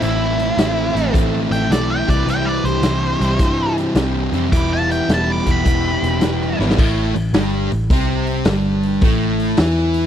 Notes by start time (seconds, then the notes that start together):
Already playing: C4 E4 A4
0.01 A1 A2 E3 A3 C4 E4, closed hi-hat
0.07 C4
0.38 C4 E4 A4, closed hi-hat
0.55 A1 A2 E3 A3 C4 E4 A4, snare, closed hi-hat
0.59 E4
0.92 A1 A2 E3 C4 E4 A4
0.97 A3 C4 E4, closed hi-hat
1.10 A1 A2 E3 A3 C4 E4 A4, kick
1.15 E4, closed hi-hat
1.51 A1 C4 E4 A4 G5, closed hi-hat
1.56 E5
1.70 B1 A2 E3 A3 C4 E4 A4 D5, snare, closed hi-hat
1.74 A4
1.90 G5
1.95 E5
2.07 C2 C3 E3 G3 C4 E4 G4 D5, kick, closed hi-hat
2.14 B4
2.26 C2 C3 E3 G3 C4 E4, closed hi-hat
2.30 G5
2.35 E5
2.46 D5
2.50 B4
2.64 C2 C4 E4 G4 C5, closed hi-hat
2.68 G4
2.82 C2 C3 E3 G3 C4 E4 G4, snare, closed hi-hat
3.18 C2 C3 E3 G3 C4 E4 G4, closed hi-hat
3.39 G2 C3 E3 G3 C4 E4 G4, kick, closed hi-hat
3.76 C4 E4 G4, closed hi-hat
3.94 C2 C3 E3 G3 C4 E4 G4, snare, closed hi-hat
4.32 F2 C3 E3 G3 C4 E4 G4, closed hi-hat
4.51 E1 E3 G3 B3 E4 G4 D6, kick, closed hi-hat
4.57 B5
4.73 F5 A5
4.89 B3 E4 G4 E5 G5, closed hi-hat
5.07 E1 E3 G3 B3 E4 G4 E5, snare, closed hi-hat
5.14 A5
5.30 B5 D6
5.42 B3 E4 G4
5.46 E1 E3 G3 B3 E4, kick, closed hi-hat
5.51 G5 B5
5.62 E1 E3 G3 B3 E4 G4, kick, closed hi-hat
6.01 E1 B3 E4 G4, closed hi-hat
6.20 E1 E3 G3 B3 E4 G4, snare, closed hi-hat
6.41 snare
6.59 G#1 E3 G3 B3 E4 G4, snare
6.70 snare
6.78 A1 A2 A3, kick, crash
7.15 A1 A2, open hi-hat
7.33 G1 G2 G3, snare, open hi-hat
7.72 A1 A2, open hi-hat
7.90 C2 C3 C4, kick, open hi-hat
8.27 open hi-hat
8.45 G1 G2 G3, snare, open hi-hat
8.83 open hi-hat
9.01 A1 A2 A3, kick, open hi-hat
9.40 open hi-hat
9.57 E2 E3 E4, snare, open hi-hat
9.77 snare
9.94 open hi-hat